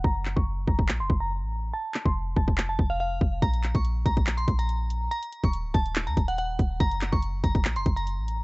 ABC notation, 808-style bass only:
X:1
M:4/4
L:1/16
Q:1/4=142
K:Gblyd
V:1 name="808-style bass" clef=bass
G,,,3 G,,,3 G,,,2 B,,, G,,, G,,,3 =A,,,3 | z3 F,,,3 F,,,4 F,,,4 F,,,2 | B,,,3 B,,,3 B,,,4 B,,,6 | z3 E,,,2 D,,, E,,,3 E,, E,,,4 E,,,2 |
G,,,3 G,,,3 G,,,2 B,,, G,,, G,,,3 =A,,,3 |]